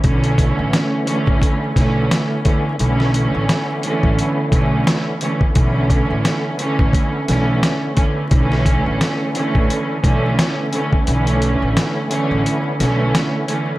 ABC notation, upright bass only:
X:1
M:4/4
L:1/16
Q:"Swing 16ths" 1/4=87
K:Bm
V:1 name="Upright bass" clef=bass
B,,,3 A,,, z3 A,,, z2 B,,,2 z4 | B,,,3 A,,, z3 A,,, z2 B,,,2 z4 | B,,,3 A,,, z3 A,,, z2 B,,,2 z4 | B,,,3 A,,, z3 A,,, z2 B,,,2 z4 |
B,,,3 A,,, z3 A,,, z2 B,,,2 z4 |]